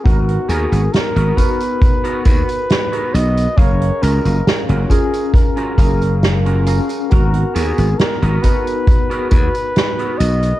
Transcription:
<<
  \new Staff \with { instrumentName = "Flugelhorn" } { \time 4/4 \key gis \dorian \tempo 4 = 68 fis'8 gis'8 ais'8 b'4 b'4 dis''8 | cis''8 ais'8 r8 gis'8 ais'4. r8 | fis'8 gis'8 ais'8 b'4 b'4 dis''8 | }
  \new Staff \with { instrumentName = "Clean electric guitar" } { \time 4/4 \key gis \dorian r8 <b fis' gis' ais'>8 r16 <b fis' gis' ais'>8 r8 <b fis' gis' ais'>8 r8 <b fis' gis' ais'>8. | r8 <cis' eis' fis' ais'>8 r16 <cis' eis' fis' ais'>8 r8 <cis' eis' fis' ais'>8 r8 <cis' eis' fis' ais'>8. | r8 <b fis' gis' ais'>8 r16 <b fis' gis' ais'>8 r8 <b fis' gis' ais'>8 r8 <b fis' gis' ais'>8. | }
  \new Staff \with { instrumentName = "Tine electric piano" } { \time 4/4 \key gis \dorian <b dis' fis' ais'>4. <b dis' fis' ais'>8 r2 | <cis' gis' ais' eis''>4. <cis' eis' gis' ais'>8 r8 <cis' gis' ais' eis''>4 <cis' gis' ais' eis''>8 | <b dis' fis' ais'>4. <b dis' fis' ais'>8 r2 | }
  \new Staff \with { instrumentName = "Slap bass" } { \clef bass \time 4/4 \key gis \dorian gis,,16 r16 dis,16 gis,,16 r16 gis,,16 r4 dis,16 r8. b,,16 r16 | fis,,16 r16 cis,16 fis,,16 r16 fis,,16 r4 fis,,4~ fis,,16 r16 | gis,,16 r16 dis,16 gis,,16 r16 gis,,16 r4 dis,16 r8. b,,16 r16 | }
  \new DrumStaff \with { instrumentName = "Drums" } \drummode { \time 4/4 <hh bd tamb>16 hh16 <hh tamb>16 <hh tamb>16 <hh sn tamb>16 hh16 <hh bd tamb>16 <hh tamb>16 <hh bd tamb>16 hh16 <hh bd tamb>16 <hh tamb>16 <hh sn tamb>16 hh16 <hh tamb>16 <hh tamb>16 | <hh bd tamb>16 hh16 <hh tamb>16 <hh tamb>16 <hh sn tamb>16 hh16 <hh bd tamb>16 <hh tamb>16 <hh bd tamb>16 hh16 <hh bd tamb>16 <hh tamb>16 <hh sn tamb>16 hh16 <hh tamb>16 <hh tamb>16 | <hh bd tamb>16 hh16 <hh tamb>16 <hh tamb>16 <hh sn tamb>16 hh16 <hh bd tamb>16 <hh tamb>16 <hh bd tamb>16 hh16 <hh bd tamb>16 <hh tamb>16 <hh sn tamb>16 hh16 <hh tamb>16 <hh tamb>16 | }
>>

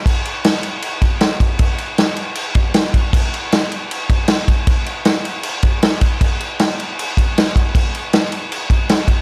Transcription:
\new DrumStaff \with { instrumentName = "Drums" } \drummode { \time 4/4 \tempo 4 = 156 <cymc bd>8 cymc8 <cymc sn>8 cymc8 cymc8 <cymc bd>8 <cymc sn>8 <cymc bd>8 | <cymc bd>8 cymc8 <cymc sn>8 cymc8 cymc8 <cymc bd>8 <cymc sn>8 <cymc bd>8 | <cymc bd>8 cymc8 <cymc sn>8 cymc8 cymc8 <cymc bd>8 <cymc sn>8 <cymc bd>8 | <cymc bd>8 cymc8 <cymc sn>8 cymc8 cymc8 <cymc bd>8 <cymc sn>8 <cymc bd>8 |
<cymc bd>8 cymc8 <cymc sn>8 cymc8 cymc8 <cymc bd>8 <cymc sn>8 <cymc bd>8 | <cymc bd>8 cymc8 <cymc sn>8 cymc8 cymc8 <cymc bd>8 <cymc sn>8 <cymc bd>8 | }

